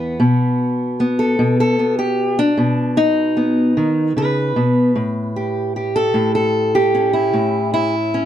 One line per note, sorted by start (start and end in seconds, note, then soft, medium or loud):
0.00 0.19 E2 medium
0.00 0.99 B3 soft
0.00 1.98 B4 medium
0.20 1.38 B2 medium
1.00 1.78 B3 medium
1.19 1.58 A4 medium
1.39 2.56 B2 medium
1.60 1.98 A4 medium
1.79 2.38 B3 soft
1.99 2.38 G4 medium
2.39 2.98 D4 medium
2.57 3.77 B2 medium
2.97 4.56 D#4 loud
3.37 4.91 B3 soft
3.77 4.16 D#3 medium
4.17 4.56 C#3 medium
4.17 5.95 B4 medium
4.56 4.96 B2 medium
4.95 6.13 A2 medium
5.36 5.75 G4 soft
5.76 6.74 G4 medium
5.96 6.34 A4 medium
6.14 7.32 A2 medium
6.35 7.13 A4 medium
6.75 7.94 G4 medium
6.95 8.13 C#4 soft
7.13 7.72 E4 medium
7.33 8.25 A2 medium
7.74 8.25 E4 medium
8.14 8.25 C#4 soft